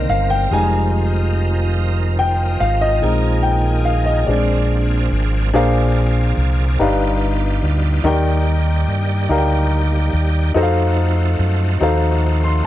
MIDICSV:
0, 0, Header, 1, 5, 480
1, 0, Start_track
1, 0, Tempo, 836353
1, 301, Time_signature, 6, 3, 24, 8
1, 7269, End_track
2, 0, Start_track
2, 0, Title_t, "Grand piano"
2, 0, Program_c, 0, 0
2, 0, Control_c, 0, 64, 127
2, 0, Note_on_c, 0, 50, 60
2, 0, Note_on_c, 0, 51, 44
2, 0, Note_on_c, 0, 58, 43
2, 0, Note_on_c, 0, 71, 55
2, 0, Note_on_c, 0, 72, 78
2, 0, Note_on_c, 0, 74, 52
2, 0, Note_on_c, 0, 75, 84
2, 0, Note_on_c, 0, 77, 73
2, 55, Note_off_c, 0, 77, 0
2, 55, Note_on_c, 0, 77, 91
2, 65, Note_off_c, 0, 75, 0
2, 169, Note_off_c, 0, 77, 0
2, 174, Note_on_c, 0, 79, 95
2, 272, Note_off_c, 0, 50, 0
2, 288, Note_off_c, 0, 79, 0
2, 295, Note_on_c, 0, 55, 50
2, 301, Note_on_c, 0, 56, 49
2, 301, Note_on_c, 0, 63, 56
2, 307, Note_on_c, 0, 80, 99
2, 308, Note_off_c, 0, 51, 0
2, 308, Control_c, 0, 64, 0
2, 309, Note_off_c, 0, 58, 0
2, 309, Note_off_c, 0, 71, 0
2, 309, Note_off_c, 0, 72, 0
2, 309, Note_off_c, 0, 74, 0
2, 417, Control_c, 0, 64, 127
2, 617, Note_off_c, 0, 55, 0
2, 620, Note_off_c, 0, 56, 0
2, 620, Note_off_c, 0, 63, 0
2, 1001, Note_off_c, 0, 80, 0
2, 1256, Note_on_c, 0, 79, 99
2, 1481, Note_off_c, 0, 79, 0
2, 1494, Note_on_c, 0, 77, 93
2, 1609, Note_off_c, 0, 77, 0
2, 1615, Note_on_c, 0, 75, 107
2, 1733, Note_on_c, 0, 56, 51
2, 1742, Note_on_c, 0, 60, 49
2, 1743, Note_on_c, 0, 63, 56
2, 1747, Control_c, 0, 64, 0
2, 1832, Control_c, 0, 64, 127
2, 1967, Note_on_c, 0, 79, 89
2, 1988, Note_off_c, 0, 75, 0
2, 2210, Note_on_c, 0, 77, 81
2, 2221, Note_off_c, 0, 79, 0
2, 2239, Note_off_c, 0, 77, 0
2, 2328, Note_on_c, 0, 75, 84
2, 2434, Note_off_c, 0, 56, 0
2, 2438, Note_off_c, 0, 60, 0
2, 2438, Note_off_c, 0, 63, 0
2, 2448, Note_on_c, 0, 74, 72
2, 2457, Note_on_c, 0, 56, 52
2, 2458, Note_off_c, 0, 75, 0
2, 2459, Note_on_c, 0, 60, 44
2, 2462, Note_on_c, 0, 62, 57
2, 2468, Control_c, 0, 64, 0
2, 2564, Control_c, 0, 64, 127
2, 3151, Note_off_c, 0, 74, 0
2, 3155, Note_off_c, 0, 56, 0
2, 3156, Note_off_c, 0, 60, 0
2, 3158, Note_off_c, 0, 62, 0
2, 3177, Note_on_c, 0, 62, 88
2, 3178, Note_on_c, 0, 68, 83
2, 3183, Note_on_c, 0, 46, 69
2, 3183, Note_on_c, 0, 70, 81
2, 3185, Note_on_c, 0, 72, 81
2, 3187, Control_c, 0, 64, 0
2, 3189, Note_on_c, 0, 77, 100
2, 3274, Control_c, 0, 64, 127
2, 3615, Note_off_c, 0, 62, 0
2, 3616, Note_off_c, 0, 68, 0
2, 3618, Note_off_c, 0, 70, 0
2, 3619, Note_off_c, 0, 72, 0
2, 3621, Note_off_c, 0, 77, 0
2, 3878, Note_off_c, 0, 46, 0
2, 3896, Note_on_c, 0, 67, 67
2, 3899, Note_on_c, 0, 63, 79
2, 3901, Note_on_c, 0, 71, 66
2, 3903, Note_on_c, 0, 43, 66
2, 3906, Control_c, 0, 64, 0
2, 3907, Note_on_c, 0, 74, 71
2, 3912, Note_on_c, 0, 77, 78
2, 4006, Control_c, 0, 64, 127
2, 4335, Note_off_c, 0, 67, 0
2, 4336, Note_off_c, 0, 63, 0
2, 4337, Note_off_c, 0, 71, 0
2, 4340, Note_off_c, 0, 74, 0
2, 4342, Note_off_c, 0, 77, 0
2, 4598, Note_off_c, 0, 43, 0
2, 4614, Note_on_c, 0, 63, 90
2, 4617, Note_on_c, 0, 67, 87
2, 4618, Note_on_c, 0, 70, 84
2, 4620, Note_on_c, 0, 51, 81
2, 4624, Note_on_c, 0, 74, 82
2, 4628, Control_c, 0, 64, 0
2, 4630, Note_on_c, 0, 79, 109
2, 4729, Control_c, 0, 64, 127
2, 5053, Note_off_c, 0, 63, 0
2, 5055, Note_off_c, 0, 67, 0
2, 5055, Note_off_c, 0, 70, 0
2, 5058, Note_off_c, 0, 74, 0
2, 5061, Note_off_c, 0, 79, 0
2, 5317, Note_off_c, 0, 51, 0
2, 5333, Note_on_c, 0, 63, 77
2, 5336, Note_on_c, 0, 67, 69
2, 5342, Note_on_c, 0, 70, 74
2, 5343, Note_on_c, 0, 74, 69
2, 5345, Note_on_c, 0, 77, 63
2, 5379, Note_off_c, 0, 77, 0
2, 5383, Note_on_c, 0, 79, 88
2, 5772, Note_off_c, 0, 63, 0
2, 5774, Note_off_c, 0, 67, 0
2, 5777, Note_off_c, 0, 70, 0
2, 5777, Note_off_c, 0, 74, 0
2, 5798, Note_off_c, 0, 79, 0
2, 6051, Note_on_c, 0, 66, 82
2, 6052, Note_on_c, 0, 63, 91
2, 6060, Note_on_c, 0, 69, 86
2, 6063, Note_on_c, 0, 72, 84
2, 6065, Control_c, 0, 64, 0
2, 6066, Note_on_c, 0, 75, 89
2, 6099, Note_on_c, 0, 77, 102
2, 6100, Note_off_c, 0, 75, 0
2, 6149, Control_c, 0, 64, 127
2, 6491, Note_off_c, 0, 66, 0
2, 6492, Note_off_c, 0, 63, 0
2, 6496, Note_off_c, 0, 69, 0
2, 6497, Note_off_c, 0, 72, 0
2, 6515, Note_off_c, 0, 77, 0
2, 6776, Note_on_c, 0, 63, 79
2, 6779, Note_on_c, 0, 66, 70
2, 6784, Note_on_c, 0, 69, 74
2, 6787, Note_on_c, 0, 72, 74
2, 6790, Note_on_c, 0, 77, 91
2, 7024, Note_off_c, 0, 77, 0
2, 7140, Note_on_c, 0, 84, 74
2, 7213, Note_off_c, 0, 63, 0
2, 7215, Note_off_c, 0, 66, 0
2, 7218, Note_off_c, 0, 69, 0
2, 7219, Note_off_c, 0, 72, 0
2, 7253, Note_off_c, 0, 84, 0
2, 7269, End_track
3, 0, Start_track
3, 0, Title_t, "French horn section"
3, 0, Program_c, 1, 60
3, 0, Note_on_c, 1, 58, 68
3, 0, Note_on_c, 1, 60, 63
3, 0, Note_on_c, 1, 70, 78
3, 279, Note_off_c, 1, 60, 0
3, 284, Note_off_c, 1, 70, 0
3, 287, Note_off_c, 1, 58, 0
3, 290, Note_on_c, 1, 65, 66
3, 293, Note_on_c, 1, 53, 76
3, 295, Note_on_c, 1, 63, 84
3, 1722, Note_off_c, 1, 53, 0
3, 1723, Note_off_c, 1, 63, 0
3, 1739, Note_on_c, 1, 58, 69
3, 1739, Note_on_c, 1, 68, 86
3, 2433, Note_off_c, 1, 65, 0
3, 2455, Note_on_c, 1, 62, 68
3, 2458, Note_on_c, 1, 60, 66
3, 3165, Note_off_c, 1, 58, 0
3, 3165, Note_off_c, 1, 68, 0
3, 3170, Note_off_c, 1, 62, 0
3, 3171, Note_off_c, 1, 60, 0
3, 7269, End_track
4, 0, Start_track
4, 0, Title_t, "Tonewheel organ"
4, 0, Program_c, 2, 16
4, 0, Note_on_c, 2, 48, 58
4, 0, Note_on_c, 2, 58, 47
4, 0, Note_on_c, 2, 60, 53
4, 0, Note_on_c, 2, 70, 70
4, 282, Note_off_c, 2, 58, 0
4, 288, Note_off_c, 2, 48, 0
4, 295, Note_on_c, 2, 63, 59
4, 296, Note_on_c, 2, 51, 55
4, 297, Note_on_c, 2, 53, 65
4, 1720, Note_off_c, 2, 60, 0
4, 1720, Note_off_c, 2, 70, 0
4, 1724, Note_off_c, 2, 53, 0
4, 1735, Note_on_c, 2, 58, 57
4, 1736, Note_on_c, 2, 53, 64
4, 1737, Note_on_c, 2, 68, 74
4, 2436, Note_off_c, 2, 51, 0
4, 2436, Note_off_c, 2, 63, 0
4, 2452, Note_off_c, 2, 68, 0
4, 2469, Note_on_c, 2, 60, 51
4, 2472, Note_on_c, 2, 62, 53
4, 2472, Note_on_c, 2, 68, 72
4, 3163, Note_off_c, 2, 53, 0
4, 3163, Note_off_c, 2, 58, 0
4, 3172, Note_off_c, 2, 60, 0
4, 3177, Note_off_c, 2, 68, 0
4, 3179, Note_off_c, 2, 62, 0
4, 3179, Note_on_c, 2, 60, 59
4, 3181, Note_on_c, 2, 74, 58
4, 3184, Note_on_c, 2, 53, 64
4, 3184, Note_on_c, 2, 58, 60
4, 3184, Note_on_c, 2, 68, 66
4, 3892, Note_off_c, 2, 60, 0
4, 3895, Note_off_c, 2, 53, 0
4, 3895, Note_off_c, 2, 58, 0
4, 3895, Note_off_c, 2, 68, 0
4, 3906, Note_on_c, 2, 59, 52
4, 3906, Note_on_c, 2, 65, 67
4, 3908, Note_on_c, 2, 63, 62
4, 3909, Note_on_c, 2, 55, 56
4, 4612, Note_off_c, 2, 63, 0
4, 4615, Note_off_c, 2, 65, 0
4, 4616, Note_off_c, 2, 59, 0
4, 4618, Note_on_c, 2, 58, 57
4, 4619, Note_on_c, 2, 63, 63
4, 4620, Note_on_c, 2, 67, 72
4, 6036, Note_off_c, 2, 74, 0
4, 6042, Note_off_c, 2, 55, 0
4, 6044, Note_off_c, 2, 58, 0
4, 6044, Note_off_c, 2, 63, 0
4, 6044, Note_off_c, 2, 67, 0
4, 6065, Note_on_c, 2, 57, 55
4, 6066, Note_on_c, 2, 53, 71
4, 6067, Note_on_c, 2, 66, 72
4, 6068, Note_on_c, 2, 60, 56
4, 6069, Note_on_c, 2, 63, 60
4, 7269, Note_off_c, 2, 53, 0
4, 7269, Note_off_c, 2, 57, 0
4, 7269, Note_off_c, 2, 60, 0
4, 7269, Note_off_c, 2, 63, 0
4, 7269, Note_off_c, 2, 66, 0
4, 7269, End_track
5, 0, Start_track
5, 0, Title_t, "Fingered electric bass"
5, 0, Program_c, 3, 33
5, 52, Note_on_c, 3, 31, 84
5, 277, Note_off_c, 3, 31, 0
5, 292, Note_on_c, 3, 29, 90
5, 1473, Note_off_c, 3, 29, 0
5, 1496, Note_on_c, 3, 32, 88
5, 1719, Note_off_c, 3, 32, 0
5, 1732, Note_on_c, 3, 34, 99
5, 2433, Note_off_c, 3, 34, 0
5, 2453, Note_on_c, 3, 34, 88
5, 2914, Note_off_c, 3, 34, 0
5, 2934, Note_on_c, 3, 32, 87
5, 3157, Note_off_c, 3, 32, 0
5, 3176, Note_on_c, 3, 34, 94
5, 3635, Note_off_c, 3, 34, 0
5, 3657, Note_on_c, 3, 36, 89
5, 3879, Note_off_c, 3, 36, 0
5, 3898, Note_on_c, 3, 31, 105
5, 4356, Note_off_c, 3, 31, 0
5, 4377, Note_on_c, 3, 38, 81
5, 4599, Note_off_c, 3, 38, 0
5, 4613, Note_on_c, 3, 39, 99
5, 5073, Note_off_c, 3, 39, 0
5, 5093, Note_on_c, 3, 43, 83
5, 5317, Note_off_c, 3, 43, 0
5, 5332, Note_on_c, 3, 38, 87
5, 5793, Note_off_c, 3, 38, 0
5, 5815, Note_on_c, 3, 39, 92
5, 6037, Note_off_c, 3, 39, 0
5, 6055, Note_on_c, 3, 41, 97
5, 6513, Note_off_c, 3, 41, 0
5, 6538, Note_on_c, 3, 42, 98
5, 6759, Note_off_c, 3, 42, 0
5, 6777, Note_on_c, 3, 39, 97
5, 7235, Note_off_c, 3, 39, 0
5, 7269, End_track
0, 0, End_of_file